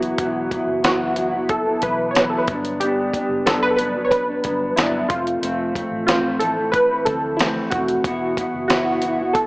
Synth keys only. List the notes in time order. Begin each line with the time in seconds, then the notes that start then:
Already playing: F#4
0.84 F#4
1.50 A4
1.83 B4
2.11 C#5
2.20 B4
2.30 A4
2.38 B4
2.80 G4
3.46 A4
3.63 B4
3.71 A4
3.76 B4
4.05 C#5
4.11 B4
4.76 E4
5.08 F4
6.07 F4
6.39 A4
6.72 B4
7.05 A4
7.36 E4
7.70 F#4
8.68 F#4
9.33 A4